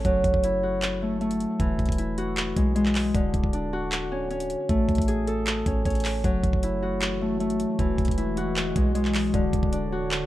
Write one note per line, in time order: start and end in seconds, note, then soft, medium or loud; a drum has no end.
0.00 1.02 A3 medium
0.00 2.56 C#4 medium
0.00 1.08 G#4 medium
0.00 1.28 A4 loud
0.05 0.23 F#1 loud
0.05 1.65 F#3 medium
0.05 kick loud
0.05 closed hi-hat medium
0.24 0.33 F#1 loud
0.24 kick medium
0.24 closed hi-hat medium
0.34 1.46 F#1 loud
0.34 kick loud
0.44 1.98 E4 medium
0.44 closed hi-hat medium
0.63 2.17 F#4 medium
0.82 clap loud
0.82 closed hi-hat medium
1.02 1.20 A3 medium
1.21 2.63 A3 medium
1.21 closed hi-hat soft
1.31 closed hi-hat medium
1.40 closed hi-hat medium
1.60 1.78 E1 loud
1.60 3.20 E3 medium
1.60 kick loud
1.60 closed hi-hat medium
1.79 1.88 E1 loud
1.79 kick medium
1.79 closed hi-hat soft
1.86 2.54 E1 loud
1.86 kick loud
1.86 closed hi-hat medium
1.92 closed hi-hat medium
1.98 4.59 E4 medium
1.98 closed hi-hat medium
2.18 3.72 F#4 medium
2.18 closed hi-hat medium
2.37 clap loud
2.37 closed hi-hat medium
2.57 3.12 B1 loud
2.57 2.74 G#3 medium
2.57 kick medium
2.57 closed hi-hat medium
2.75 3.20 G#3 medium
2.75 closed hi-hat medium
2.86 clap medium
2.95 clap loud
2.95 open hi-hat medium
3.14 3.33 D1 loud
3.14 4.74 D3 medium
3.14 kick loud
3.14 closed hi-hat medium
3.34 3.43 D1 loud
3.34 kick medium
3.34 closed hi-hat medium
3.44 4.56 D1 loud
3.44 kick loud
3.53 5.73 D4 medium
3.53 closed hi-hat medium
3.73 6.17 F#4 loud
3.92 clap loud
3.92 closed hi-hat medium
4.12 4.30 C#4 medium
4.30 5.66 C#4 medium
4.30 closed hi-hat soft
4.40 closed hi-hat medium
4.50 closed hi-hat medium
4.69 4.88 A1 loud
4.69 7.21 A3 medium
4.69 kick loud
4.69 closed hi-hat medium
4.89 4.98 A1 loud
4.89 kick medium
4.89 closed hi-hat soft
4.95 5.63 A1 loud
4.95 kick loud
4.95 closed hi-hat medium
5.02 closed hi-hat medium
5.08 7.27 G#4 medium
5.08 closed hi-hat medium
5.27 7.47 A4 loud
5.27 closed hi-hat medium
5.47 clap loud
5.47 closed hi-hat medium
5.66 5.85 A1 loud
5.66 5.85 C#4 medium
5.66 kick loud
5.66 closed hi-hat medium
5.85 6.23 A1 loud
5.85 8.75 C#4 medium
5.85 kick medium
5.85 closed hi-hat medium
5.90 closed hi-hat medium
5.95 closed hi-hat medium
6.00 closed hi-hat medium
6.05 clap loud
6.05 open hi-hat medium
6.24 6.43 F#1 loud
6.24 9.31 E3 medium
6.24 7.84 F#3 medium
6.24 7.78 A3 medium
6.24 10.26 F#4 loud
6.24 kick loud
6.24 closed hi-hat medium
6.44 6.53 F#1 loud
6.44 kick loud
6.44 closed hi-hat medium
6.53 7.65 F#1 loud
6.53 kick loud
6.63 8.17 E4 medium
6.63 closed hi-hat medium
6.82 8.37 F#4 loud
7.02 clap loud
7.02 closed hi-hat medium
7.21 7.40 A3 medium
7.40 8.82 A3 medium
7.40 closed hi-hat soft
7.50 closed hi-hat medium
7.60 closed hi-hat medium
7.79 7.98 E1 loud
7.79 9.39 E3 medium
7.79 9.32 G#3 medium
7.79 kick loud
7.79 closed hi-hat medium
7.98 8.08 E1 loud
7.98 kick loud
7.98 closed hi-hat medium
8.05 8.73 E1 loud
8.05 kick medium
8.05 closed hi-hat medium
8.11 closed hi-hat medium
8.18 10.26 E4 medium
8.18 closed hi-hat medium
8.37 9.92 F#4 medium
8.37 closed hi-hat medium
8.56 clap loud
8.56 closed hi-hat medium
8.76 9.32 B1 loud
8.76 8.93 G#3 medium
8.76 kick loud
8.76 closed hi-hat medium
8.95 9.39 G#3 medium
8.95 closed hi-hat medium
9.05 clap medium
9.15 clap loud
9.15 open hi-hat medium
9.34 9.53 D1 loud
9.34 10.26 D3 medium
9.34 10.26 C#5 medium
9.34 kick loud
9.34 closed hi-hat medium
9.53 9.63 D1 loud
9.53 kick medium
9.53 closed hi-hat medium
9.63 10.26 D1 loud
9.63 kick medium
9.72 10.26 D4 medium
9.72 closed hi-hat medium
9.92 10.26 F#4 loud
10.11 clap loud
10.11 closed hi-hat medium